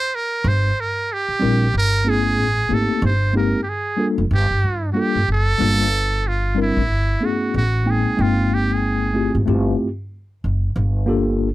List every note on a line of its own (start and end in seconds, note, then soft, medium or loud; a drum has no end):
0.00 0.17 C5 loud
0.15 0.50 A#4 loud
0.44 0.69 G1 loud
0.44 0.82 C5 loud
0.80 1.14 A#4 medium
1.13 1.75 G4 loud
1.28 muted upright bass stroke soft
1.39 1.66 A#1 loud
1.39 1.65 G3 medium
1.39 1.65 C4 medium
1.39 1.66 D4 medium
1.39 1.66 E4 medium
1.39 1.66 A#4 medium
1.74 2.37 G1 medium
1.78 2.11 A#4 loud
2.04 2.45 A3 medium
2.04 2.45 B3 medium
2.04 2.46 C#4 medium
2.04 2.46 E4 medium
2.04 2.47 G#4 medium
2.10 2.76 G#4 loud
2.37 2.62 A1 loud
2.69 2.85 G#1 medium
2.69 3.09 A3 medium
2.69 3.10 A#3 medium
2.69 3.10 C4 medium
2.69 3.11 D#4 medium
2.69 3.11 G4 medium
2.74 3.04 A4 medium
3.02 3.51 G1 loud
3.02 3.34 C5 medium
3.33 3.58 G#3 medium
3.33 3.59 A#3 medium
3.33 3.59 C4 medium
3.33 3.59 D#4 medium
3.33 3.60 G4 medium
3.33 3.61 A#4 medium
3.63 3.71 G4 medium
3.69 4.07 G#4 medium
3.97 4.22 G3 medium
3.97 4.23 A#3 medium
3.97 4.23 D4 medium
3.97 4.24 F4 medium
3.97 4.24 A4 medium
4.18 4.28 F1 medium
4.31 4.46 G1 loud
4.31 4.88 G4 medium
4.51 4.60 G1 medium
4.63 4.88 G2 medium
4.92 5.19 G3 medium
4.92 5.20 A#3 medium
4.92 5.20 D4 medium
4.92 5.20 F4 medium
4.92 5.02 F#4 medium
4.97 5.30 G4 loud
4.97 5.21 A4 medium
5.15 5.25 G1 medium
5.28 5.53 F#1 medium
5.32 6.29 A4 loud
5.58 6.73 G1 loud
5.58 5.84 G3 medium
5.58 5.84 A#3 medium
5.58 5.85 D4 medium
5.58 5.85 F4 medium
5.58 5.85 A4 medium
6.28 6.59 F4 medium
6.55 6.80 G3 medium
6.55 6.81 C4 medium
6.55 6.81 D4 medium
6.55 6.82 E4 medium
6.55 6.82 A#4 medium
6.62 7.27 E4 medium
6.77 6.90 A1 medium
6.90 7.14 G1 medium
7.20 7.61 A3 medium
7.20 7.61 B3 medium
7.20 7.62 C#4 soft
7.20 7.62 E4 soft
7.20 7.62 G#4 medium
7.25 7.56 F#4 medium
7.54 8.03 A1 loud
7.54 7.92 F#4 medium
7.84 8.15 G#3 medium
7.84 8.17 A#3 medium
7.84 8.17 C4 medium
7.84 8.18 D#4 medium
7.84 8.19 G5 medium
7.90 8.23 G#4 medium
8.17 9.31 G1 loud
8.17 9.09 G#3 medium
8.17 9.10 A#3 medium
8.17 9.10 C4 medium
8.17 9.11 D#4 medium
8.17 9.11 G5 medium
8.21 8.56 F4 medium
8.54 8.75 G4 medium
8.73 9.36 G#4 medium
9.14 9.39 A3 medium
9.14 9.39 C4 medium
9.14 9.40 E4 medium
9.14 9.40 F4 medium
9.14 9.40 G4 medium
9.35 9.44 G#1 medium
9.46 9.72 G1 medium
9.46 9.87 A3 medium
9.46 9.87 C4 medium
9.46 9.87 E4 medium
9.46 9.88 F4 medium
9.46 9.88 G4 medium
10.44 10.69 F#1 medium
10.76 11.54 G1 loud
11.06 11.47 A#3 medium
11.06 11.48 D4 medium
11.06 11.48 F4 medium
11.06 11.49 G4 medium
11.06 11.49 A4 medium